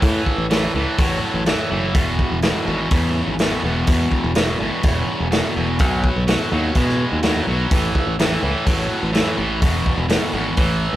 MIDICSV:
0, 0, Header, 1, 4, 480
1, 0, Start_track
1, 0, Key_signature, 4, "major"
1, 0, Tempo, 479616
1, 24, Time_signature, 4, 2, 24, 8
1, 10970, End_track
2, 0, Start_track
2, 0, Title_t, "Distorted electric guitar"
2, 0, Program_c, 0, 30
2, 13, Note_on_c, 0, 45, 74
2, 22, Note_on_c, 0, 52, 80
2, 451, Note_off_c, 0, 45, 0
2, 456, Note_off_c, 0, 52, 0
2, 501, Note_on_c, 0, 45, 75
2, 505, Note_on_c, 0, 52, 87
2, 719, Note_off_c, 0, 45, 0
2, 721, Note_off_c, 0, 52, 0
2, 749, Note_on_c, 0, 45, 70
2, 755, Note_on_c, 0, 52, 81
2, 964, Note_off_c, 0, 45, 0
2, 967, Note_off_c, 0, 52, 0
2, 982, Note_on_c, 0, 45, 78
2, 986, Note_on_c, 0, 54, 83
2, 1418, Note_off_c, 0, 45, 0
2, 1419, Note_off_c, 0, 54, 0
2, 1462, Note_on_c, 0, 45, 78
2, 1469, Note_on_c, 0, 52, 87
2, 1682, Note_off_c, 0, 45, 0
2, 1685, Note_off_c, 0, 52, 0
2, 1706, Note_on_c, 0, 45, 77
2, 1709, Note_on_c, 0, 52, 84
2, 1924, Note_off_c, 0, 45, 0
2, 1926, Note_off_c, 0, 52, 0
2, 1944, Note_on_c, 0, 40, 79
2, 1947, Note_on_c, 0, 47, 88
2, 2380, Note_off_c, 0, 40, 0
2, 2382, Note_off_c, 0, 47, 0
2, 2428, Note_on_c, 0, 40, 66
2, 2430, Note_on_c, 0, 47, 82
2, 2646, Note_off_c, 0, 40, 0
2, 2647, Note_off_c, 0, 47, 0
2, 2659, Note_on_c, 0, 40, 71
2, 2668, Note_on_c, 0, 47, 77
2, 2882, Note_off_c, 0, 40, 0
2, 2887, Note_off_c, 0, 47, 0
2, 2910, Note_on_c, 0, 40, 74
2, 2912, Note_on_c, 0, 49, 73
2, 3344, Note_off_c, 0, 40, 0
2, 3345, Note_off_c, 0, 49, 0
2, 3403, Note_on_c, 0, 40, 69
2, 3403, Note_on_c, 0, 47, 78
2, 3615, Note_off_c, 0, 40, 0
2, 3615, Note_off_c, 0, 47, 0
2, 3638, Note_on_c, 0, 40, 76
2, 3650, Note_on_c, 0, 47, 83
2, 3853, Note_off_c, 0, 40, 0
2, 3858, Note_off_c, 0, 47, 0
2, 3882, Note_on_c, 0, 40, 85
2, 3886, Note_on_c, 0, 47, 82
2, 4312, Note_off_c, 0, 40, 0
2, 4313, Note_off_c, 0, 47, 0
2, 4357, Note_on_c, 0, 40, 78
2, 4359, Note_on_c, 0, 47, 82
2, 4573, Note_off_c, 0, 40, 0
2, 4574, Note_off_c, 0, 47, 0
2, 4596, Note_on_c, 0, 40, 67
2, 4605, Note_on_c, 0, 47, 76
2, 4813, Note_off_c, 0, 40, 0
2, 4817, Note_off_c, 0, 47, 0
2, 4845, Note_on_c, 0, 40, 77
2, 4848, Note_on_c, 0, 49, 74
2, 5274, Note_off_c, 0, 40, 0
2, 5275, Note_off_c, 0, 49, 0
2, 5311, Note_on_c, 0, 40, 65
2, 5320, Note_on_c, 0, 47, 84
2, 5531, Note_off_c, 0, 40, 0
2, 5535, Note_off_c, 0, 47, 0
2, 5555, Note_on_c, 0, 40, 64
2, 5567, Note_on_c, 0, 47, 83
2, 5772, Note_off_c, 0, 40, 0
2, 5778, Note_off_c, 0, 47, 0
2, 5811, Note_on_c, 0, 47, 75
2, 5812, Note_on_c, 0, 54, 77
2, 6236, Note_off_c, 0, 47, 0
2, 6237, Note_off_c, 0, 54, 0
2, 6279, Note_on_c, 0, 47, 74
2, 6282, Note_on_c, 0, 54, 85
2, 6494, Note_off_c, 0, 47, 0
2, 6496, Note_off_c, 0, 54, 0
2, 6521, Note_on_c, 0, 47, 75
2, 6528, Note_on_c, 0, 54, 78
2, 6735, Note_off_c, 0, 47, 0
2, 6739, Note_off_c, 0, 54, 0
2, 6763, Note_on_c, 0, 47, 68
2, 6769, Note_on_c, 0, 56, 81
2, 7192, Note_off_c, 0, 47, 0
2, 7195, Note_off_c, 0, 56, 0
2, 7234, Note_on_c, 0, 47, 78
2, 7239, Note_on_c, 0, 54, 72
2, 7452, Note_off_c, 0, 47, 0
2, 7454, Note_off_c, 0, 54, 0
2, 7477, Note_on_c, 0, 47, 64
2, 7483, Note_on_c, 0, 54, 81
2, 7693, Note_off_c, 0, 47, 0
2, 7696, Note_off_c, 0, 54, 0
2, 7719, Note_on_c, 0, 45, 78
2, 7722, Note_on_c, 0, 52, 83
2, 8149, Note_off_c, 0, 45, 0
2, 8150, Note_off_c, 0, 52, 0
2, 8197, Note_on_c, 0, 45, 76
2, 8207, Note_on_c, 0, 52, 86
2, 8411, Note_off_c, 0, 45, 0
2, 8416, Note_off_c, 0, 52, 0
2, 8426, Note_on_c, 0, 45, 70
2, 8433, Note_on_c, 0, 52, 87
2, 8646, Note_off_c, 0, 45, 0
2, 8649, Note_off_c, 0, 52, 0
2, 8663, Note_on_c, 0, 45, 81
2, 8668, Note_on_c, 0, 54, 84
2, 9099, Note_off_c, 0, 45, 0
2, 9102, Note_off_c, 0, 54, 0
2, 9133, Note_on_c, 0, 45, 75
2, 9135, Note_on_c, 0, 52, 78
2, 9358, Note_off_c, 0, 45, 0
2, 9359, Note_off_c, 0, 52, 0
2, 9376, Note_on_c, 0, 45, 81
2, 9382, Note_on_c, 0, 52, 92
2, 9598, Note_off_c, 0, 45, 0
2, 9602, Note_off_c, 0, 52, 0
2, 9622, Note_on_c, 0, 40, 81
2, 9627, Note_on_c, 0, 47, 89
2, 10056, Note_off_c, 0, 40, 0
2, 10059, Note_off_c, 0, 47, 0
2, 10093, Note_on_c, 0, 40, 76
2, 10097, Note_on_c, 0, 47, 88
2, 10315, Note_off_c, 0, 40, 0
2, 10317, Note_off_c, 0, 47, 0
2, 10337, Note_on_c, 0, 40, 74
2, 10340, Note_on_c, 0, 47, 91
2, 10557, Note_off_c, 0, 40, 0
2, 10558, Note_off_c, 0, 47, 0
2, 10575, Note_on_c, 0, 45, 68
2, 10576, Note_on_c, 0, 52, 82
2, 10970, Note_off_c, 0, 45, 0
2, 10970, Note_off_c, 0, 52, 0
2, 10970, End_track
3, 0, Start_track
3, 0, Title_t, "Fingered electric bass"
3, 0, Program_c, 1, 33
3, 24, Note_on_c, 1, 45, 87
3, 210, Note_off_c, 1, 45, 0
3, 381, Note_on_c, 1, 33, 88
3, 662, Note_off_c, 1, 33, 0
3, 745, Note_on_c, 1, 37, 96
3, 838, Note_off_c, 1, 37, 0
3, 986, Note_on_c, 1, 33, 81
3, 1172, Note_off_c, 1, 33, 0
3, 1341, Note_on_c, 1, 33, 80
3, 1530, Note_off_c, 1, 33, 0
3, 1716, Note_on_c, 1, 30, 83
3, 1949, Note_off_c, 1, 30, 0
3, 1949, Note_on_c, 1, 28, 104
3, 2229, Note_off_c, 1, 28, 0
3, 2318, Note_on_c, 1, 28, 77
3, 2502, Note_off_c, 1, 28, 0
3, 2679, Note_on_c, 1, 32, 106
3, 2863, Note_off_c, 1, 32, 0
3, 2917, Note_on_c, 1, 40, 89
3, 3194, Note_off_c, 1, 40, 0
3, 3280, Note_on_c, 1, 32, 83
3, 3557, Note_off_c, 1, 32, 0
3, 3638, Note_on_c, 1, 28, 77
3, 3823, Note_off_c, 1, 28, 0
3, 3880, Note_on_c, 1, 40, 94
3, 4064, Note_off_c, 1, 40, 0
3, 4245, Note_on_c, 1, 28, 101
3, 4520, Note_off_c, 1, 28, 0
3, 4606, Note_on_c, 1, 32, 89
3, 4695, Note_off_c, 1, 32, 0
3, 4842, Note_on_c, 1, 28, 93
3, 5026, Note_off_c, 1, 28, 0
3, 5207, Note_on_c, 1, 28, 83
3, 5390, Note_off_c, 1, 28, 0
3, 5569, Note_on_c, 1, 28, 74
3, 5805, Note_off_c, 1, 28, 0
3, 5805, Note_on_c, 1, 35, 92
3, 6081, Note_off_c, 1, 35, 0
3, 6167, Note_on_c, 1, 35, 89
3, 6349, Note_off_c, 1, 35, 0
3, 6525, Note_on_c, 1, 39, 96
3, 6708, Note_off_c, 1, 39, 0
3, 6760, Note_on_c, 1, 47, 89
3, 7038, Note_off_c, 1, 47, 0
3, 7124, Note_on_c, 1, 39, 80
3, 7400, Note_off_c, 1, 39, 0
3, 7475, Note_on_c, 1, 35, 75
3, 7661, Note_off_c, 1, 35, 0
3, 7720, Note_on_c, 1, 33, 90
3, 7904, Note_off_c, 1, 33, 0
3, 8077, Note_on_c, 1, 33, 88
3, 8354, Note_off_c, 1, 33, 0
3, 8434, Note_on_c, 1, 37, 93
3, 8527, Note_off_c, 1, 37, 0
3, 8674, Note_on_c, 1, 33, 86
3, 8859, Note_off_c, 1, 33, 0
3, 9035, Note_on_c, 1, 33, 76
3, 9219, Note_off_c, 1, 33, 0
3, 9392, Note_on_c, 1, 33, 77
3, 9633, Note_off_c, 1, 33, 0
3, 9633, Note_on_c, 1, 28, 104
3, 9909, Note_off_c, 1, 28, 0
3, 9983, Note_on_c, 1, 28, 91
3, 10170, Note_off_c, 1, 28, 0
3, 10343, Note_on_c, 1, 32, 98
3, 10529, Note_off_c, 1, 32, 0
3, 10586, Note_on_c, 1, 33, 90
3, 10863, Note_off_c, 1, 33, 0
3, 10937, Note_on_c, 1, 37, 85
3, 10970, Note_off_c, 1, 37, 0
3, 10970, End_track
4, 0, Start_track
4, 0, Title_t, "Drums"
4, 23, Note_on_c, 9, 36, 120
4, 26, Note_on_c, 9, 46, 54
4, 123, Note_off_c, 9, 36, 0
4, 126, Note_off_c, 9, 46, 0
4, 265, Note_on_c, 9, 36, 66
4, 365, Note_off_c, 9, 36, 0
4, 506, Note_on_c, 9, 46, 52
4, 517, Note_on_c, 9, 38, 99
4, 606, Note_off_c, 9, 46, 0
4, 617, Note_off_c, 9, 38, 0
4, 984, Note_on_c, 9, 46, 56
4, 986, Note_on_c, 9, 36, 112
4, 1084, Note_off_c, 9, 46, 0
4, 1086, Note_off_c, 9, 36, 0
4, 1463, Note_on_c, 9, 46, 44
4, 1474, Note_on_c, 9, 38, 101
4, 1564, Note_off_c, 9, 46, 0
4, 1575, Note_off_c, 9, 38, 0
4, 1949, Note_on_c, 9, 46, 51
4, 1950, Note_on_c, 9, 36, 118
4, 2049, Note_off_c, 9, 46, 0
4, 2050, Note_off_c, 9, 36, 0
4, 2192, Note_on_c, 9, 36, 73
4, 2292, Note_off_c, 9, 36, 0
4, 2425, Note_on_c, 9, 46, 46
4, 2436, Note_on_c, 9, 38, 97
4, 2525, Note_off_c, 9, 46, 0
4, 2536, Note_off_c, 9, 38, 0
4, 2909, Note_on_c, 9, 46, 51
4, 2915, Note_on_c, 9, 36, 105
4, 3009, Note_off_c, 9, 46, 0
4, 3015, Note_off_c, 9, 36, 0
4, 3391, Note_on_c, 9, 46, 46
4, 3402, Note_on_c, 9, 38, 92
4, 3491, Note_off_c, 9, 46, 0
4, 3502, Note_off_c, 9, 38, 0
4, 3873, Note_on_c, 9, 46, 62
4, 3880, Note_on_c, 9, 36, 105
4, 3973, Note_off_c, 9, 46, 0
4, 3980, Note_off_c, 9, 36, 0
4, 4119, Note_on_c, 9, 36, 68
4, 4219, Note_off_c, 9, 36, 0
4, 4354, Note_on_c, 9, 46, 54
4, 4365, Note_on_c, 9, 38, 112
4, 4454, Note_off_c, 9, 46, 0
4, 4465, Note_off_c, 9, 38, 0
4, 4835, Note_on_c, 9, 46, 49
4, 4842, Note_on_c, 9, 36, 110
4, 4935, Note_off_c, 9, 46, 0
4, 4942, Note_off_c, 9, 36, 0
4, 5323, Note_on_c, 9, 46, 46
4, 5334, Note_on_c, 9, 38, 103
4, 5424, Note_off_c, 9, 46, 0
4, 5435, Note_off_c, 9, 38, 0
4, 5794, Note_on_c, 9, 46, 55
4, 5803, Note_on_c, 9, 36, 110
4, 5894, Note_off_c, 9, 46, 0
4, 5903, Note_off_c, 9, 36, 0
4, 6042, Note_on_c, 9, 36, 74
4, 6142, Note_off_c, 9, 36, 0
4, 6282, Note_on_c, 9, 46, 48
4, 6293, Note_on_c, 9, 38, 107
4, 6382, Note_off_c, 9, 46, 0
4, 6393, Note_off_c, 9, 38, 0
4, 6754, Note_on_c, 9, 46, 50
4, 6761, Note_on_c, 9, 36, 98
4, 6854, Note_off_c, 9, 46, 0
4, 6861, Note_off_c, 9, 36, 0
4, 6892, Note_on_c, 9, 38, 31
4, 6992, Note_off_c, 9, 38, 0
4, 7233, Note_on_c, 9, 46, 47
4, 7244, Note_on_c, 9, 38, 90
4, 7333, Note_off_c, 9, 46, 0
4, 7344, Note_off_c, 9, 38, 0
4, 7715, Note_on_c, 9, 46, 57
4, 7718, Note_on_c, 9, 36, 111
4, 7815, Note_off_c, 9, 46, 0
4, 7818, Note_off_c, 9, 36, 0
4, 7957, Note_on_c, 9, 36, 73
4, 8057, Note_off_c, 9, 36, 0
4, 8200, Note_on_c, 9, 46, 54
4, 8211, Note_on_c, 9, 38, 106
4, 8300, Note_off_c, 9, 46, 0
4, 8311, Note_off_c, 9, 38, 0
4, 8672, Note_on_c, 9, 46, 55
4, 8674, Note_on_c, 9, 36, 100
4, 8772, Note_off_c, 9, 46, 0
4, 8774, Note_off_c, 9, 36, 0
4, 9152, Note_on_c, 9, 46, 54
4, 9163, Note_on_c, 9, 38, 101
4, 9252, Note_off_c, 9, 46, 0
4, 9263, Note_off_c, 9, 38, 0
4, 9627, Note_on_c, 9, 46, 56
4, 9628, Note_on_c, 9, 36, 109
4, 9727, Note_off_c, 9, 46, 0
4, 9728, Note_off_c, 9, 36, 0
4, 9869, Note_on_c, 9, 36, 72
4, 9969, Note_off_c, 9, 36, 0
4, 10103, Note_on_c, 9, 46, 53
4, 10114, Note_on_c, 9, 38, 107
4, 10203, Note_off_c, 9, 46, 0
4, 10214, Note_off_c, 9, 38, 0
4, 10578, Note_on_c, 9, 46, 52
4, 10584, Note_on_c, 9, 36, 103
4, 10678, Note_off_c, 9, 46, 0
4, 10684, Note_off_c, 9, 36, 0
4, 10970, End_track
0, 0, End_of_file